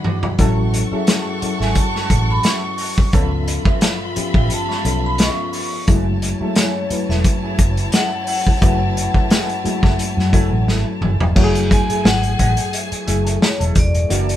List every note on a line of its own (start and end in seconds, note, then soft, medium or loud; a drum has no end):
0.00 3.09 E3 medium
0.00 0.39 F#3 medium
0.00 0.36 G#3 medium
0.00 0.36 D4 medium
0.00 0.42 D4 medium
0.00 0.40 E4 medium
0.00 0.41 F#4 medium
0.00 3.10 F#4 medium
0.00 0.35 G#4 medium
0.00 0.41 G#4 medium
0.00 0.35 F#5 medium
0.00 0.35 B5 medium
0.04 0.16 F#4 soft
0.04 0.17 G#4 soft
0.04 0.17 D5 medium
0.04 mid tom medium
0.23 muted clean electric guitar stroke soft
0.23 floor tom medium
0.39 0.83 A1 medium
0.39 0.75 F#3 loud
0.39 3.11 A3 medium
0.39 3.11 C#4 medium
0.39 0.75 C#4 medium
0.39 0.75 E4 medium
0.39 0.54 F#4 medium
0.39 3.10 A4 medium
0.39 0.55 A4 medium
0.39 0.75 A4 loud
0.39 0.55 C#5 medium
0.39 3.09 F#5 medium
0.39 3.09 C#6 medium
0.39 kick medium
0.39 closed hi-hat medium
0.73 muted clean electric guitar stroke soft
0.73 closed hi-hat medium
0.91 1.27 F#3 medium
0.91 1.27 C#4 medium
0.91 1.28 E4 soft
0.91 1.03 F#4 soft
0.91 1.28 G#4 medium
0.91 1.02 A4 soft
0.91 1.02 E5 medium
0.91 muted fingered electric bass stroke soft
1.07 1.23 F#4 medium
1.07 1.23 A4 medium
1.07 1.24 C#5 medium
1.07 1.64 E5 medium
1.07 snare medium
1.07 closed hi-hat medium
1.42 2.37 F#3 medium
1.42 2.37 C#4 medium
1.42 2.37 E4 medium
1.42 2.38 A4 medium
1.42 muted fingered electric bass stroke soft
1.42 muted clean electric guitar stroke soft
1.42 closed hi-hat medium
1.60 1.73 G#1 medium
1.60 1.71 F#4 soft
1.60 1.71 A4 soft
1.60 1.70 E5 soft
1.60 1.76 G#5 medium
1.60 snare soft
1.75 2.31 A5 medium
1.75 muted clean electric guitar stroke soft
1.75 kick medium
1.75 closed hi-hat medium
1.95 2.09 F#4 medium
1.95 2.08 A4 medium
1.95 2.08 C#5 medium
1.95 snare soft
2.10 2.39 A1 medium
2.10 muted clean electric guitar stroke soft
2.10 kick medium
2.10 closed hi-hat medium
2.30 2.45 B5 medium
2.30 muted clean electric guitar stroke soft
2.43 2.60 F#4 medium
2.43 2.60 A4 medium
2.43 2.61 E5 medium
2.43 3.10 C#6 medium
2.43 snare medium
2.43 closed hi-hat medium
2.63 muted clean electric guitar stroke soft
2.78 2.91 F#4 soft
2.78 2.91 A4 soft
2.78 2.92 C#5 medium
2.78 open hi-hat medium
2.98 muted clean electric guitar stroke soft
2.98 kick medium
3.13 3.57 C#2 medium
3.13 5.85 C#3 medium
3.13 3.84 F3 medium
3.13 3.84 B3 medium
3.13 5.85 B3 medium
3.13 11.20 C#4 medium
3.13 3.85 C#4 medium
3.13 3.28 F4 medium
3.13 5.85 F4 medium
3.13 5.84 F4 medium
3.13 3.85 A4 loud
3.13 3.29 B4 medium
3.13 3.29 C#5 medium
3.13 5.84 E5 medium
3.13 5.84 B5 medium
3.13 kick loud
3.13 closed hi-hat medium
3.48 muted clean electric guitar stroke soft
3.48 closed hi-hat medium
3.65 3.77 F4 soft
3.65 3.77 B4 soft
3.65 3.76 E5 medium
3.65 muted fingered electric bass stroke soft
3.65 kick loud
3.81 3.97 F4 medium
3.81 3.97 B4 medium
3.81 3.98 C#5 medium
3.81 4.38 E5 medium
3.81 snare loud
3.81 closed hi-hat medium
4.16 4.64 F3 medium
4.16 4.65 B3 medium
4.16 4.65 C#4 medium
4.16 4.65 G4 medium
4.16 muted fingered electric bass stroke soft
4.16 muted clean electric guitar stroke soft
4.16 closed hi-hat medium
4.34 4.48 A1 medium
4.34 4.46 F4 soft
4.34 4.46 B4 soft
4.34 4.45 E5 medium
4.34 4.53 G5 medium
4.34 kick medium
4.50 5.01 A5 medium
4.50 muted clean electric guitar stroke soft
4.50 closed hi-hat medium
4.69 4.83 F4 medium
4.69 4.82 B4 medium
4.69 4.82 C#5 medium
4.69 snare soft
4.84 5.29 B1 loud
4.84 5.56 F3 medium
4.84 5.56 B3 medium
4.84 5.56 C#4 medium
4.84 5.56 A4 medium
4.84 muted clean electric guitar stroke soft
4.84 closed hi-hat medium
5.04 5.21 B5 loud
5.04 muted clean electric guitar stroke soft
5.18 5.40 F4 medium
5.18 5.38 B4 medium
5.18 5.38 E5 medium
5.18 5.85 C#6 medium
5.18 snare medium
5.18 closed hi-hat medium
5.38 muted clean electric guitar stroke soft
5.53 5.66 F4 soft
5.53 5.66 B4 medium
5.53 5.66 C#5 medium
5.53 open hi-hat medium
5.72 muted clean electric guitar stroke soft
5.87 6.32 F#1 medium
5.87 11.20 E3 medium
5.87 6.23 F#3 medium
5.87 11.20 F#3 medium
5.87 6.24 G#3 medium
5.87 6.23 A3 medium
5.87 6.03 A3 medium
5.87 11.32 E4 medium
5.87 6.24 E4 medium
5.87 6.04 E4 medium
5.87 11.20 F#4 medium
5.87 6.04 G#4 medium
5.87 11.32 C#5 medium
5.87 11.32 A5 medium
5.87 kick medium
5.87 closed hi-hat medium
6.22 muted clean electric guitar stroke soft
6.22 closed hi-hat medium
6.40 6.76 F#3 medium
6.40 6.77 G#3 medium
6.40 6.76 A3 medium
6.40 6.52 A3 soft
6.40 6.76 E4 medium
6.40 6.52 E4 medium
6.40 6.51 A4 medium
6.40 muted fingered electric bass stroke soft
6.56 6.72 A3 medium
6.56 6.72 E4 medium
6.56 6.73 G#4 medium
6.56 7.06 C#5 medium
6.56 snare loud
6.56 closed hi-hat medium
6.90 7.85 F#3 medium
6.90 7.86 A3 medium
6.90 7.86 E4 medium
6.90 7.86 B4 medium
6.90 muted fingered electric bass stroke soft
6.90 muted clean electric guitar stroke soft
6.90 closed hi-hat medium
7.09 7.22 E1 medium
7.09 7.20 A3 soft
7.09 7.20 E4 soft
7.09 7.19 A4 medium
7.09 7.90 E5 medium
7.09 snare soft
7.24 kick medium
7.24 closed hi-hat medium
7.43 7.57 A3 medium
7.43 7.57 E4 medium
7.43 7.56 G#4 medium
7.59 7.88 F#1 medium
7.59 muted clean electric guitar stroke soft
7.59 kick medium
7.59 closed hi-hat medium
7.77 muted clean electric guitar stroke soft
7.77 closed hi-hat medium
7.92 8.15 A3 medium
7.92 8.12 E4 medium
7.92 8.11 A4 medium
7.92 8.25 F#5 medium
7.92 snare medium
7.92 closed hi-hat medium
8.12 muted clean electric guitar stroke soft
8.27 8.40 A3 soft
8.27 8.40 E4 soft
8.27 8.41 G#4 medium
8.27 10.64 F#5 medium
8.27 open hi-hat medium
8.47 muted clean electric guitar stroke soft
8.47 kick medium
8.61 9.06 F#1 medium
8.61 9.33 F#3 medium
8.61 9.33 A3 medium
8.61 8.77 A3 medium
8.61 9.33 E4 medium
8.61 8.78 E4 medium
8.61 8.78 G#4 medium
8.61 9.33 B4 loud
8.61 kick loud
8.61 closed hi-hat medium
8.96 muted clean electric guitar stroke soft
8.96 closed hi-hat medium
9.14 9.26 A3 soft
9.14 9.26 E4 soft
9.14 9.25 A4 soft
9.14 muted fingered electric bass stroke soft
9.14 kick medium
9.30 9.52 A3 medium
9.30 9.52 E4 medium
9.30 9.52 G#4 medium
9.30 snare loud
9.30 closed hi-hat medium
9.49 closed hi-hat soft
9.64 10.13 F#3 medium
9.64 10.14 G#3 medium
9.64 10.13 A3 medium
9.64 10.13 E4 medium
9.64 muted fingered electric bass stroke soft
9.64 muted clean electric guitar stroke soft
9.64 closed hi-hat medium
9.83 9.96 F#1 medium
9.83 9.95 A3 soft
9.83 9.94 E4 soft
9.83 9.94 A4 medium
9.83 kick medium
9.83 snare soft
9.99 muted clean electric guitar stroke soft
9.99 closed hi-hat medium
10.17 10.30 F#2 medium
10.17 muted clean electric guitar stroke soft
10.17 snare soft
10.32 10.49 F#1 medium
10.32 11.04 F#3 medium
10.32 11.04 A3 medium
10.32 10.49 A3 medium
10.32 11.04 E4 medium
10.32 10.49 E4 medium
10.32 10.49 G#4 medium
10.32 11.05 A4 medium
10.32 kick medium
10.32 closed hi-hat medium
10.51 10.65 A1 medium
10.51 muted clean electric guitar stroke soft
10.67 10.83 G#1 medium
10.67 10.83 A3 medium
10.67 10.83 E4 medium
10.67 10.83 A4 medium
10.67 snare medium
10.87 muted clean electric guitar stroke soft
11.01 11.17 F#1 medium
11.01 11.14 A3 soft
11.01 11.14 E4 soft
11.01 11.15 G#4 medium
11.01 mid tom medium
11.20 11.33 E1 medium
11.20 floor tom medium
11.35 11.80 F#1 medium
11.35 14.37 E3 medium
11.35 12.31 F#3 loud
11.35 12.31 A3 loud
11.35 11.51 A3 medium
11.35 14.08 A3 medium
11.35 12.31 E4 medium
11.35 11.52 E4 medium
11.35 11.44 F#4 medium
11.35 14.37 F#4 medium
11.35 13.72 G#4 medium
11.35 14.08 G#4 medium
11.35 11.52 G#4 medium
11.35 13.72 G#5 loud
11.35 kick loud
11.35 crash medium
11.44 12.35 G#4 loud
11.55 closed hi-hat medium
11.70 11.89 G#5 medium
11.70 muted clean electric guitar stroke soft
11.70 kick medium
11.70 closed hi-hat medium
11.89 12.00 A3 soft
11.89 12.00 E4 soft
11.89 11.99 G#4 medium
11.89 12.06 G#5 medium
11.89 muted fingered electric bass stroke soft
11.89 closed hi-hat soft
12.05 12.33 G#1 medium
12.05 12.70 F#5 loud
12.05 muted clean electric guitar stroke soft
12.05 snare loud
12.23 muted clean electric guitar stroke soft
12.23 closed hi-hat soft
12.39 12.55 A1 medium
12.39 12.60 A3 medium
12.39 12.57 E4 medium
12.39 12.56 G#4 medium
12.39 kick medium
12.39 closed hi-hat medium
12.57 muted clean electric guitar stroke soft
12.57 closed hi-hat medium
12.73 13.45 E5 medium
12.73 muted clean electric guitar stroke soft
12.73 closed hi-hat medium
12.91 muted clean electric guitar stroke soft
12.91 muted fingered electric bass stroke soft
12.91 closed hi-hat soft
13.07 13.36 F#1 medium
13.07 13.78 F#3 medium
13.07 13.19 A3 medium
13.07 13.78 A3 medium
13.07 13.19 E4 medium
13.07 13.79 E4 medium
13.07 13.20 G#4 medium
13.07 13.79 G#4 medium
13.07 closed hi-hat medium
13.25 13.36 A3 soft
13.25 13.36 E4 soft
13.25 13.35 A4 medium
13.25 closed hi-hat medium
13.42 13.59 C#5 medium
13.42 snare loud
13.59 13.73 E1 medium
13.59 13.73 A3 soft
13.59 13.73 E4 medium
13.59 13.73 A4 medium
13.59 closed hi-hat soft
13.75 14.04 E1 medium
13.75 14.37 D5 medium
13.75 muted clean electric guitar stroke soft
13.75 kick medium
13.75 closed hi-hat medium
13.94 muted clean electric guitar stroke soft
13.94 closed hi-hat soft
14.09 14.37 F#1 medium
14.09 14.37 E3 medium
14.09 14.37 A#3 medium
14.09 14.37 D4 medium
14.09 14.25 E4 medium
14.09 14.37 F#4 medium
14.09 14.37 A4 medium
14.09 14.25 A#4 medium
14.09 14.26 D5 medium
14.09 14.37 A5 loud
14.09 closed hi-hat medium
14.29 closed hi-hat medium